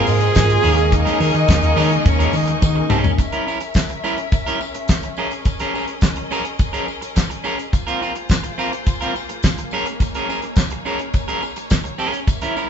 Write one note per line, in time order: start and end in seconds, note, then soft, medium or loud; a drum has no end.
0.00 0.22 C3 loud
0.00 0.22 G#3 medium
0.00 0.22 A#3 medium
0.00 0.60 C4 medium
0.00 0.23 F4 loud
0.00 0.15 G#4 medium
0.00 0.96 G#4 loud
0.00 0.60 A#4 loud
0.00 3.15 A#4 medium
0.00 0.60 D#5 medium
0.00 0.62 F5 medium
0.00 3.15 G#5 medium
0.00 0.62 C6 loud
0.07 0.27 G#2 loud
0.07 muted clean electric guitar stroke medium
0.07 open hi-hat medium
0.07 tambourine medium
0.21 0.47 C3 medium
0.21 0.47 G#3 medium
0.21 0.47 A#3 medium
0.21 0.47 F4 medium
0.21 muted clean electric guitar stroke soft
0.21 closed hi-hat medium
0.21 tambourine soft
0.35 0.55 G#2 loud
0.35 muted clean electric guitar stroke soft
0.35 kick loud
0.35 snare loud
0.35 clap medium
0.35 closed hi-hat medium
0.35 tambourine loud
0.49 0.64 C3 medium
0.49 0.63 G#3 medium
0.49 0.63 A#3 medium
0.49 0.65 F4 medium
0.49 muted clean electric guitar stroke soft
0.49 closed hi-hat soft
0.63 1.03 D#2 loud
0.63 1.26 C#3 loud
0.63 1.27 G#3 medium
0.63 3.15 A#3 medium
0.63 1.27 A#3 loud
0.63 0.77 C#4 medium
0.63 1.27 D#4 loud
0.63 3.15 G#4 medium
0.63 0.77 G#4 medium
0.63 0.77 A#4 medium
0.63 3.14 D#5 medium
0.63 3.16 D#5 medium
0.63 3.16 C#6 medium
0.63 open hi-hat medium
0.63 tambourine medium
0.78 muted clean electric guitar stroke medium
0.78 closed hi-hat soft
0.78 tambourine soft
0.91 2.09 D#4 loud
0.91 muted clean electric guitar stroke soft
0.91 kick loud
0.91 closed hi-hat medium
0.91 tambourine medium
1.05 1.18 C#4 medium
1.05 1.19 G#4 medium
1.05 1.19 A#4 medium
1.05 snare soft
1.05 closed hi-hat soft
1.20 1.30 D#3 loud
1.20 1.30 C#4 medium
1.20 1.31 G#4 medium
1.20 1.31 A#4 medium
1.20 open hi-hat medium
1.20 tambourine soft
1.33 1.59 C#3 medium
1.33 1.44 D#3 loud
1.33 1.59 G#3 medium
1.33 1.59 A#3 medium
1.33 1.60 D#4 medium
1.33 muted clean electric guitar stroke soft
1.33 closed hi-hat soft
1.33 tambourine soft
1.48 1.59 D#2 loud
1.48 kick loud
1.48 snare loud
1.48 clap medium
1.48 closed hi-hat medium
1.48 tambourine medium
1.63 1.72 D#2 medium
1.63 1.88 C#3 medium
1.63 1.88 G#3 medium
1.63 1.88 A#3 medium
1.63 1.89 D#4 loud
1.63 muted clean electric guitar stroke soft
1.63 closed hi-hat medium
1.76 1.96 D#3 medium
1.76 1.90 C#4 medium
1.76 1.90 G#4 medium
1.76 1.89 A#4 loud
1.76 open hi-hat medium
1.76 tambourine medium
1.90 2.41 C#3 medium
1.90 2.41 G#3 medium
1.90 2.42 A#3 medium
1.90 2.42 D#4 medium
1.90 muted clean electric guitar stroke soft
1.90 closed hi-hat soft
2.05 2.25 D#2 loud
2.05 2.38 C#4 loud
2.05 muted clean electric guitar stroke soft
2.05 kick loud
2.05 closed hi-hat medium
2.05 tambourine medium
2.19 2.33 C#4 medium
2.19 2.33 G#4 medium
2.19 2.32 A#4 loud
2.19 closed hi-hat medium
2.33 2.53 D#3 loud
2.33 2.63 D#4 medium
2.33 muted clean electric guitar stroke soft
2.33 open hi-hat medium
2.33 tambourine medium
2.48 2.73 C#3 medium
2.48 2.73 G#3 medium
2.48 2.73 A#3 medium
2.48 2.74 D#4 medium
2.48 muted clean electric guitar stroke medium
2.48 closed hi-hat medium
2.62 2.82 D#3 medium
2.62 3.03 D#4 medium
2.62 muted clean electric guitar stroke soft
2.62 kick loud
2.62 high tom medium
2.62 tambourine loud
2.75 3.13 C#3 medium
2.75 3.14 G#3 medium
2.75 3.14 A#3 medium
2.75 3.14 D#4 medium
2.75 muted clean electric guitar stroke medium
2.90 3.10 C2 medium
2.90 3.10 C#4 medium
2.90 3.04 G#4 medium
2.90 3.03 A#4 medium
2.90 mid tom loud
2.90 tambourine medium
3.04 muted clean electric guitar stroke medium
3.04 floor tom loud
3.04 tambourine soft
3.18 7.69 C#4 medium
3.18 12.24 G#4 medium
3.18 5.16 A#4 medium
3.18 5.15 E5 medium
3.18 muted clean electric guitar stroke soft
3.18 kick medium
3.18 closed hi-hat medium
3.18 tambourine medium
3.32 3.46 C#4 medium
3.32 3.46 E4 medium
3.32 3.46 A#4 medium
3.32 closed hi-hat soft
3.47 3.57 C#4 medium
3.47 3.57 E4 medium
3.47 3.58 A#4 medium
3.47 tambourine soft
3.60 muted clean electric guitar stroke soft
3.60 closed hi-hat soft
3.60 tambourine soft
3.74 kick medium
3.74 snare medium
3.74 clap medium
3.74 closed hi-hat medium
3.74 tambourine medium
3.89 muted clean electric guitar stroke soft
3.89 closed hi-hat soft
4.04 4.17 C#4 medium
4.04 4.17 E4 medium
4.04 4.17 A#4 medium
4.04 tambourine medium
4.18 muted clean electric guitar stroke soft
4.18 closed hi-hat soft
4.32 muted clean electric guitar stroke soft
4.32 kick loud
4.32 closed hi-hat soft
4.32 tambourine medium
4.47 4.59 C#4 medium
4.47 4.60 E4 medium
4.47 4.59 A#4 medium
4.47 closed hi-hat soft
4.61 muted clean electric guitar stroke soft
4.61 tambourine medium
4.75 muted clean electric guitar stroke soft
4.75 closed hi-hat soft
4.88 muted clean electric guitar stroke soft
4.88 kick loud
4.88 snare medium
4.88 clap medium
4.88 closed hi-hat medium
4.88 tambourine loud
5.03 muted clean electric guitar stroke soft
5.03 closed hi-hat soft
5.17 5.31 C#4 medium
5.17 5.31 G#4 medium
5.17 7.71 A#4 medium
5.17 5.31 A#4 medium
5.17 7.71 D#5 medium
5.17 tambourine soft
5.31 muted clean electric guitar stroke soft
5.31 closed hi-hat soft
5.31 tambourine soft
5.45 muted clean electric guitar stroke soft
5.45 kick medium
5.45 closed hi-hat medium
5.45 tambourine soft
5.60 5.73 C#4 medium
5.60 5.74 G#4 medium
5.60 5.73 A#4 medium
5.60 snare soft
5.60 closed hi-hat soft
5.74 5.84 C#4 medium
5.74 5.85 G#4 medium
5.74 5.85 A#4 medium
5.74 tambourine soft
5.88 muted clean electric guitar stroke soft
5.88 closed hi-hat soft
6.01 kick loud
6.01 snare loud
6.01 clap medium
6.01 closed hi-hat medium
6.01 tambourine medium
6.16 muted clean electric guitar stroke medium
6.16 closed hi-hat soft
6.31 6.44 C#4 medium
6.31 6.45 G#4 medium
6.31 6.44 A#4 loud
6.31 tambourine medium
6.45 muted clean electric guitar stroke soft
6.45 closed hi-hat soft
6.59 muted clean electric guitar stroke soft
6.59 kick loud
6.59 closed hi-hat medium
6.59 tambourine medium
6.73 6.86 C#4 medium
6.73 6.87 G#4 medium
6.73 6.86 A#4 medium
6.73 closed hi-hat soft
6.87 muted clean electric guitar stroke soft
6.87 tambourine soft
7.01 muted clean electric guitar stroke soft
7.01 closed hi-hat medium
7.01 tambourine soft
7.15 muted clean electric guitar stroke soft
7.15 kick medium
7.15 snare medium
7.15 clap medium
7.15 closed hi-hat medium
7.15 tambourine loud
7.30 muted clean electric guitar stroke soft
7.30 closed hi-hat soft
7.44 7.57 C#4 medium
7.44 7.58 G#4 medium
7.44 7.57 A#4 medium
7.44 tambourine medium
7.58 muted clean electric guitar stroke soft
7.58 closed hi-hat soft
7.58 tambourine soft
7.73 12.24 A#3 medium
7.73 9.70 F4 medium
7.73 9.70 C5 medium
7.73 muted clean electric guitar stroke soft
7.73 kick medium
7.73 closed hi-hat medium
7.73 tambourine medium
7.87 8.00 C4 medium
7.87 8.00 F4 medium
7.87 8.00 A#4 medium
7.87 closed hi-hat soft
7.87 tambourine soft
8.01 8.12 C4 medium
8.01 8.12 F4 medium
8.01 8.12 A#4 medium
8.01 tambourine soft
8.15 muted clean electric guitar stroke soft
8.15 closed hi-hat soft
8.29 kick loud
8.29 snare medium
8.29 clap medium
8.29 closed hi-hat medium
8.29 tambourine medium
8.44 muted clean electric guitar stroke soft
8.44 closed hi-hat soft
8.58 8.71 C4 medium
8.58 8.72 F4 medium
8.58 8.71 A#4 loud
8.58 tambourine medium
8.72 muted clean electric guitar stroke soft
8.72 closed hi-hat soft
8.86 muted clean electric guitar stroke soft
8.86 kick loud
8.86 closed hi-hat medium
8.86 tambourine medium
9.01 9.13 C4 medium
9.01 9.14 F4 medium
9.01 9.14 A#4 medium
9.01 closed hi-hat soft
9.15 muted clean electric guitar stroke soft
9.15 tambourine medium
9.29 muted clean electric guitar stroke soft
9.29 closed hi-hat soft
9.43 muted clean electric guitar stroke soft
9.43 kick medium
9.43 snare loud
9.43 clap medium
9.43 closed hi-hat medium
9.43 tambourine loud
9.58 muted clean electric guitar stroke soft
9.58 closed hi-hat soft
9.71 9.85 C#4 medium
9.71 12.25 D#4 medium
9.71 9.86 G#4 medium
9.71 9.86 A#4 medium
9.71 12.70 C#5 medium
9.71 tambourine medium
9.85 muted clean electric guitar stroke soft
9.85 closed hi-hat soft
9.85 tambourine soft
10.00 muted clean electric guitar stroke soft
10.00 kick medium
10.00 closed hi-hat medium
10.00 tambourine medium
10.14 10.28 C#4 medium
10.14 10.28 G#4 medium
10.14 10.28 A#4 medium
10.14 closed hi-hat soft
10.14 tambourine soft
10.29 10.39 C#4 medium
10.29 10.39 G#4 medium
10.29 10.40 A#4 medium
10.29 tambourine soft
10.42 muted clean electric guitar stroke soft
10.42 closed hi-hat soft
10.56 kick loud
10.56 snare loud
10.56 clap medium
10.56 closed hi-hat medium
10.56 tambourine medium
10.70 muted clean electric guitar stroke medium
10.70 closed hi-hat soft
10.85 10.99 C#4 loud
10.85 10.99 G#4 medium
10.85 10.99 A#4 medium
10.85 tambourine soft
10.99 muted clean electric guitar stroke soft
10.99 closed hi-hat soft
11.14 muted clean electric guitar stroke soft
11.14 kick medium
11.14 closed hi-hat soft
11.14 tambourine medium
11.28 11.42 C#4 medium
11.28 11.42 G#4 medium
11.28 11.41 A#4 medium
11.28 closed hi-hat soft
11.42 muted clean electric guitar stroke soft
11.42 tambourine medium
11.56 muted clean electric guitar stroke soft
11.56 closed hi-hat soft
11.56 tambourine soft
11.70 muted clean electric guitar stroke soft
11.70 kick medium
11.70 snare loud
11.70 clap medium
11.70 closed hi-hat medium
11.70 tambourine loud
11.84 muted clean electric guitar stroke soft
11.84 closed hi-hat soft
11.98 12.19 C#4 medium
11.98 12.13 G#4 medium
11.98 12.12 A#4 medium
11.98 tambourine soft
12.13 muted clean electric guitar stroke soft
12.13 closed hi-hat soft
12.13 tambourine soft
12.27 12.70 A#3 medium
12.27 12.70 E4 medium
12.27 12.70 G#4 medium
12.27 muted clean electric guitar stroke soft
12.27 kick loud
12.27 closed hi-hat medium
12.27 tambourine medium
12.41 12.55 C#4 medium
12.41 12.55 E4 medium
12.41 12.55 A#4 medium
12.41 snare soft
12.41 closed hi-hat soft
12.56 12.66 C#4 medium
12.56 12.67 E4 medium
12.56 12.67 A#4 medium
12.56 tambourine soft